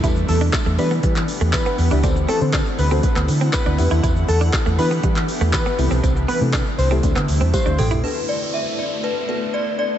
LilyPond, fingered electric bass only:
\new Staff \with { instrumentName = "Fingered electric bass" } { \clef bass \time 4/4 \key e \minor \tempo 4 = 120 e,8 e,8 r16 e,16 e8 e8 r16 e,16 e16 r16 e,16 cis,16 | d,8 r16 d8 r16 d,8 r16 d,16 d8 r16 d,16 e,16 dis,16 | r8 e,8 r16 e,16 e8 e8 r16 e,16 e16 r16 c,16 b,,16 | c,8 r16 c8 r16 c,8 d,16 d16 d,16 e,16 r16 d,16 a,,16 ais,,16 |
r1 | }